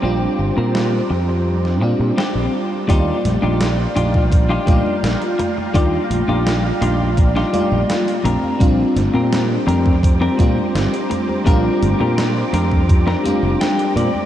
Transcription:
<<
  \new Staff \with { instrumentName = "String machine" } { \time 4/4 \key ees \lydian \tempo 4 = 84 <g' c'' bes'' d'''>1 | <f' f'' g'' bes''>1~ | <f' f'' g'' bes''>2.~ <f' f'' g'' bes''>8 <g' c'' bes'' d'''>8~ | <g' c'' bes'' d'''>1~ |
<g' c'' bes'' d'''>1 | }
  \new Staff \with { instrumentName = "Clean electric guitar" } { \time 4/4 \key ees \lydian <c' d' g'>16 r8 <c' d' bes'>16 r2 <c' d' g'>8 r8 | <d' ees' f' g'>8 r16 <d' ees' f' g'>16 r8 <d' ees' f' g'>8 r16 <d' ees' f' g'>8. r4 | <d' ees' f' g'>8 r16 <d' ees' f' g'>16 r8 <d' ees' f' g'>8 r16 <d' ees' f' g'>8. r8 <c' d' g' bes'>8~ | <c' d' g' bes'>8 r16 <c' d' g' bes'>16 r8 <c' d' g' bes'>8 r16 <c' d' g' bes'>8. r4 |
<c' d' g' bes'>8 r16 <c' d' g' bes'>16 r8 <c' d' g' bes'>8 r16 <c' d' g' bes'>8. g''8 d''8 | }
  \new Staff \with { instrumentName = "FM electric piano" } { \time 4/4 \key ees \lydian <g c' d' f'>2~ <g c' d' f'>8 <g c' d' f'>4. | <g bes f' d''>2~ <g bes f' d''>8 <g bes f' d''>4. | <g bes f' d''>2~ <g bes f' d''>8 <g bes f' d''>4 r8 | <g c' d' f'>2~ <g c' d' f'>8 <g c' d' f'>4. |
<g c' d' f'>2~ <g c' d' f'>8 <g c' d' f'>4. | }
  \new Staff \with { instrumentName = "Fingered electric bass" } { \clef bass \time 4/4 \key ees \lydian bes,,16 r16 g,,16 bes,8 r16 f,4 bes,16 bes,16 r16 bes,,16 r8 | ees,16 r16 bes,,16 bes,,8 r16 bes,,8. r16 bes,,16 r16 bes,,16 r8. | ees,16 r16 bes,,16 bes,,8 r16 bes,,8. r8 bes,,16 r8 bes,,16 r16 | bes,,16 r16 g,,16 bes,8 r16 f,8. r16 bes,16 r16 g,,16 r8. |
bes,,16 r16 g,,16 bes,8 r16 f,8. r8 f,,16 r8 bes,16 r16 | }
  \new DrumStaff \with { instrumentName = "Drums" } \drummode { \time 4/4 r4 sn4 r16 sn8. sn4 | <cgho hh bd>8 <cgho hh sn>16 cgho16 <cgho hh sn>8 <cgho hh>16 <cgho bd>16 <cgho hh bd>8 <cgho hh bd>16 cgho16 <cgho hh sn>16 hh16 <cgho hh>16 cgho16 | <hh bd>8 <cgho hh>16 cgho16 <cgho hh sn>8 <cgho hh>16 cgho16 <hh bd>16 sn16 <cgho hh>16 cgho16 <cgho hh sn>16 hh16 <cgho hh>16 cgho16 | <hh bd>8 <cgho hh sn>16 cgho16 <cgho hh sn>8 <cgho hh>16 <cgho bd>16 <cgho hh bd>8 <cgho hh bd>16 cgho16 <cgho hh sn>16 hh16 <cgho hh>16 cgho16 |
<cgho hh bd>8 <cgho hh>16 cgho16 <cgho hh sn>8 <cgho hh>16 <cgho bd>16 <cgho hh bd>16 sn16 <cgho hh>16 cgho16 <cgho hh sn>16 hh16 <cgho hh>16 cgho16 | }
>>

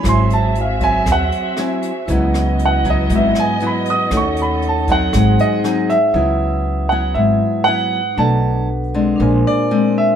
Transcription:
<<
  \new Staff \with { instrumentName = "Grand piano" } { \time 4/4 \key cis \minor \tempo 4 = 118 << { bis''8 a''8 eis''8 gis''8 fis''4 r4 | r4 fis''8 dis''8 e''8 gis''8 b''8 dis'''8 | cis'''8 b''8 a''8 fis''4. r4 | r1 |
r1 | } \\ { r1 | r1 | r2 r8 dis''4 e''8~ | e''4. fis''8 e''4 fis''4 |
a''4 r4. d''4 e''8 | } >> }
  \new Staff \with { instrumentName = "Vibraphone" } { \time 4/4 \key cis \minor <fis' bis' e'' gis''>2. <fis' bis' e'' gis''>4 | <e' b' dis'' fis''>2.~ <e' b' dis'' fis''>8 <e' b' dis'' fis''>8 | <dis' a' cis'' fis''>2 <dis' gis' bis' fis''>2 | <e' b' fis'' dis'''>1 |
<d' a' b' fis''>2 <d' ais' bis' gis''>2 | }
  \new Staff \with { instrumentName = "String section" } { \time 4/4 \key cis \minor << { e''1 | dis''1~ | dis''1 | r1 |
r1 | } \\ { <bis fis' gis'>1 | <b e'>1 | <cis' a'>2 <bis gis'>2 | r1 |
r1 | } >> }
  \new Staff \with { instrumentName = "Nylon-string guitar" } { \time 4/4 \key cis \minor << { <fis bis e'>4 r8 <fis bis>4. <fis bis e'>8 r8 | <fis b e'>4. <fis b e'>4. <fis b e'>4 | <a cis' fis'>4. <fis bis dis'>4. <fis bis dis'>8 r8 | <fis b e'>4. <fis b e'>4. <fis b e'>8 r8 |
<fis a d'>4 r8 <gis bis d'>4. <gis bis d'>4 | } \\ { gis,2 r2 | cis2 gis,2 | dis2 gis,2 | cis2 gis,2 |
b,2 ais,2 | } >> }
  \new Staff \with { instrumentName = "Upright bass" } { \clef bass \time 4/4 \key cis \minor gis,,2 dis,8 r4. | cis,2 gis,,8 r4. | dis,2 gis,,8 r4. | cis,2 gis,,8 r4. |
b,,2 ais,,8 r4. | }
  \new DrumStaff \with { instrumentName = "Drums" } \drummode { \time 4/4 <hh bd ss>8 hh8 hh8 <hh bd>8 <hh bd ss>8 hh8 <hh ss>8 hh8 | <hh bd>8 <hh ss>8 hh8 <hh bd>8 <hh bd>8 <hh ss>8 hh8 hh8 | <hh bd ss>8 hh8 hh8 <hh bd>8 <hh bd ss>8 hh8 <hh ss>8 hh8 | r4 r4 r4 r4 |
r4 r4 r4 r4 | }
>>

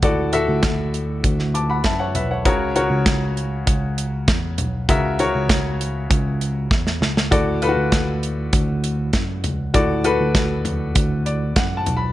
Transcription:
<<
  \new Staff \with { instrumentName = "Upright piano" } { \time 4/4 \key d \major \tempo 4 = 99 << { r2 r8 <a'' d'''>16 <fis'' b''>16 <e'' a''>16 <cis'' fis''>16 <b' e''>16 <cis'' fis''>16~ | <cis'' fis''>16 r2. r8. | r1 | r1 |
r2 r8 d''8 \tuplet 3/2 { fis''8 a''8 b''8 } | } \\ { <fis' a' d''>8 <fis' a' e''>4. r2 | <fis' ais' cis''>8 <fis' ais' cis''>4. r2 | <fis' ais' e''>8 <fis' ais' cis''>4. r2 | <fis' a' d''>8 <f' fis' a' b'>4. r2 |
<fis' a' d''>8 <fis' a' b'>4. r2 | } >> }
  \new Staff \with { instrumentName = "Upright piano" } { \clef bass \time 4/4 \key d \major a,4. r2 r8 | cis4. r2 r8 | cis4. r2 r8 | a,4. r2 r8 |
a,4. r2 r8 | }
  \new Staff \with { instrumentName = "Tine electric piano" } { \clef bass \time 4/4 \key d \major d,8. d,4~ d,16 d,4 fis,8 b,,8 | cis,8. cis,4~ cis,16 cis,4 e,8 b,,8 | cis,8. cis,4~ cis,16 cis,4 e,8 cis,8 | d,8. d,4~ d,16 d,4 fis,8 cis,8 |
d,8. d,4~ d,16 d,4 fis,8 b,,8 | }
  \new DrumStaff \with { instrumentName = "Drums" } \drummode { \time 4/4 <hh bd>8 hh8 <hh bd sn>8 hh8 <hh bd>16 sn16 hh8 <hh bd sn>8 <hh tomfh>8 | <hh bd>8 hh8 <hh bd sn>8 hh8 <hh bd>8 hh8 <hh bd sn>8 <hh tomfh>8 | <hh bd>8 hh8 <hh bd sn>8 hh8 <hh bd>8 hh8 <bd sn>16 sn16 sn16 sn16 | <hh bd>8 hh8 <hh bd sn>8 hh8 <hh bd>8 hh8 <hh bd sn>8 <hh tomfh>8 |
<hh bd>8 hh8 <hh bd sn>8 <hh tomfh>8 <hh bd>8 hh8 <hh bd sn>8 <hh tomfh>8 | }
>>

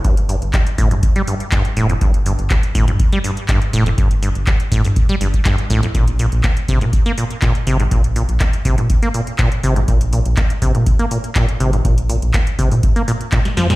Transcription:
<<
  \new Staff \with { instrumentName = "Acid bass" } { \clef bass \time 4/4 \key bes \major \tempo 4 = 122 g,16 r16 g,16 r16 g16 r16 a,16 f,16 r16 g16 g,16 r16 g,16 r16 a,16 f,16 | g,16 r16 g,16 r16 g16 r16 a,16 f,16 r16 g16 g,16 r16 g,16 r16 a,16 f,16 | g,16 r16 g,16 r16 g16 r16 a,16 f,16 r16 g16 g,16 r16 g,16 r16 a,16 f,16 | bes,16 r16 bes,16 r16 bes16 r16 c16 aes,16 r16 bes16 bes,16 r16 bes,16 r16 c16 aes,16 |
bes,16 r16 bes,16 r16 bes16 r16 c16 aes,16 r16 bes16 bes,16 r16 bes,16 r16 c16 aes,16 | bes,16 r16 bes,16 r16 bes16 r16 c16 aes,16 r16 bes16 bes,16 r16 bes,16 r16 c16 aes,16 | bes,16 r16 bes,16 r16 bes16 r16 c16 aes,16 r16 bes16 bes,16 r16 bes,16 r16 f16 bes,16 | }
  \new Staff \with { instrumentName = "Analog synth bass" } { \clef bass \time 4/4 \key bes \major g,,8. g,,16 r8 g,,16 g,16 r4. f,,8 | g,,8. g,,16 r8 g,,16 g,16 r4. f,,8 | g,,8. g,,16 r8 g,,16 g,16 r8 g,,16 r8. bes,,16 r16 | bes,,8. bes,,16 r8 bes,,16 bes,16 r4. aes,,8 |
bes,,8. bes,,16 r8 bes,,16 bes,16 r4. aes,,8 | bes,,8. bes,,16 r8 bes,,16 bes,16 r4. aes,,8 | bes,,8. bes,,16 r8 bes,,16 bes,16 r4. f,8 | }
  \new DrumStaff \with { instrumentName = "Drums" } \drummode { \time 4/4 <hh bd>16 hh16 hho16 hh16 <hc hh bd>16 hh16 <hho bd>16 hh16 <hh bd>16 hh16 hho16 hh16 <hc hh bd>16 hh16 hho16 hh16 | <hh bd>16 hh16 hho16 hh16 <hc hh bd>16 hh16 <hho bd>16 hh16 <hh bd>16 hh16 hho16 hh16 <hc hh bd>16 hh16 hho16 hh16 | <hh bd>16 hh16 hho16 hh16 <hc hh bd>16 hh16 <hho bd>16 hho16 <hh bd>16 hh16 hho16 <hh bd>16 <hc hh bd>16 hh16 hho16 hh16 | <hh bd>16 hh16 hho16 hh16 <hc hh bd>16 hh16 <hho bd>16 hh16 <hh bd>16 hh16 hho16 hh16 <hc hh bd>16 hh16 hho16 hh16 |
<hh bd>16 hh16 hho16 hh16 <hc hh bd>16 hh16 <hho bd>16 hh16 <hh bd>16 hh16 hho16 hh16 <hc hh bd>16 hh16 hho16 hh16 | <hh bd>16 hh16 hho16 hh16 <hc hh bd>16 hh16 <hho bd>16 hh16 <hh bd>16 hh16 hho16 hh16 <hc hh bd>16 hh16 hho16 hh16 | <hh bd>16 hh16 hho16 hh16 <hc hh bd>16 hh16 <hho bd>16 hho16 <hh bd>16 hh16 hho16 hh16 <hc hh bd>16 <hh sn>16 <hho sn>16 <hh sn>16 | }
>>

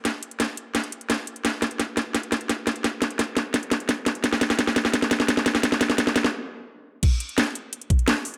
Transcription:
\new DrumStaff \with { instrumentName = "Drums" } \drummode { \time 4/4 \tempo 4 = 172 <hh bd sn>8 hh16 hh16 <hh bd sn>8 hh8 <hh bd sn>16 hh16 hh16 hh16 <hh bd sn>8 hh16 hh16 | <hh bd sn>8 <hh sn>16 hh16 <hh bd sn>8 <hh sn>8 <hh bd sn>16 hh16 <hh sn>16 hh16 <hh bd sn>8 <hh sn>16 hh16 | <hh bd sn>8 <hh sn>16 hh16 <hh bd sn>8 <hh sn>8 <hh bd sn>16 hh16 <hh sn>16 hh16 <hh bd sn>8 <hh sn>16 hh16 | <hh bd sn>16 sn16 <hh sn>16 <hh sn>16 <hh bd sn>16 sn16 <hh sn>16 sn16 <hh bd sn>16 <hh sn>16 <hh sn>16 <hh sn>16 <hh bd sn>16 sn16 <hh sn>16 <hh sn>16 |
<hh bd sn>16 sn16 <hh sn>16 <hh sn>16 <hh bd sn>16 sn16 <hh sn>16 sn16 r4 r4 | <cymc hh bd>8 hh16 hh16 <hh sn>8 hh8 hh16 hh16 <hh bd>16 hh16 <hh sn>8 hho16 hh16 | }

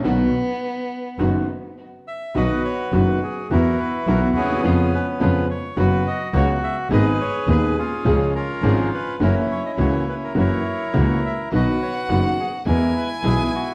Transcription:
<<
  \new Staff \with { instrumentName = "Violin" } { \time 4/4 \key b \major \tempo 4 = 105 b2. r4 | r1 | r1 | r1 |
r1 | fis''2 gis''2 | }
  \new Staff \with { instrumentName = "Bandoneon" } { \time 4/4 \key b \major << { r2. r8 e''8 | dis''8 cis''8 b'8 gis'8 ais'8 b'8 ais'8 gis'8~ | gis'8 b'8 b'8 cis''8 b'8 dis''8 cis''8 e''8 | dis''8 cis''8 b'8 gis'4 ais'4 b'8 |
ais'8 cis''16 dis''16 cis''8 b'16 ais'16 cis''4. e''8 | dis''8 cis''8 b'8 gis'8 ais'8 b'8 gis'8 fis'8 | } \\ { r1 | <fis' b'>2 <e' fis'>4. <b cis'>8~ | <b cis'>4. r8 fis'2 | <gis' b'>4. <cis' eis'>4 <cis' eis'>4. |
<cis' e'>2 <e' ais'>2 | <fis' b'>2 e'2 | } >> }
  \new Staff \with { instrumentName = "String section" } { \time 4/4 \key b \major <b dis' fis'>8 r4. <b dis' fis'>8 r4. | <b dis' fis'>8 r8 <b dis' fis'>8 r8 <b e' fis'>8 r8 <b e' fis'>8 r8 | <b cis' eis'>8 r8 <b cis' eis'>8 r8 <b cis' fis'>8 r8 <b cis' fis'>8 r8 | <b dis' gis'>8 r8 <b dis' gis'>8 r8 <cis' eis' gis'>8 r8 <cis' eis' gis'>8 r8 |
<ais e' fis'>8 r8 <ais e' fis'>8 r8 <ais e' fis'>8 r8 <ais e' fis'>8 r8 | <b dis' fis'>8 r8 <b dis' fis'>8 r8 <b e' gis'>8 r8 <b e' gis'>8 r8 | }
  \new Staff \with { instrumentName = "Upright piano" } { \clef bass \time 4/4 \key b \major <b,, b, dis fis b fis'>8 r4. <fis,, fis, dis fis b fis'>8 r4. | <b,, b, dis fis b fis'>8 r8 <fis,, fis, dis fis b fis'>8 r8 <e, e fis b fis'>8 r8 <b,, b, e fis b fis'>8 r32 d,32 dis,32 e,32 | <eis, cis eis gis b eis'>8 r8 <eis, cis eis gis b eis'>8 r8 <fis, cis fis b fis'>8 r8 <cis, cis fis b fis'>8 r8 | <gis,, gis, dis gis b gis'>8 r8 <dis,, dis, dis gis b gis'>8 r8 <cis, cis eis gis cis' gis'>8 r8 <gis,, gis, eis gis cis' gis'>8 r8 |
<fis, e fis ais cis' fis'>8 r8 <cis, cis e ais cis' fis'>8 r8 <fis, e fis ais cis' fis'>8 r8 <cis, cis e ais cis' fis'>8 r8 | <b,, b, dis fis b fis'>8 r8 <fis,, fis, dis fis b fis'>8 r8 <e, e gis b gis'>8 r8 <b,, b, e gis b gis'>8 r8 | }
  \new Staff \with { instrumentName = "Double bass" } { \clef bass \time 4/4 \key b \major b,,8 r4. fis,,8 r4. | b,,8 r8 fis,,8 r8 e,8 r8 b,,8 dis,8 | eis,8 r8 eis,8 r8 fis,,8 r8 cis,8 r8 | gis,,8 r8 dis,8 r8 cis,8 r8 gis,,8 r8 |
fis,,8 r8 cis,8 r8 fis,,8 r8 cis,8 r8 | b,,8 r8 fis,,8 r8 e,8 r8 b,,8 r8 | }
>>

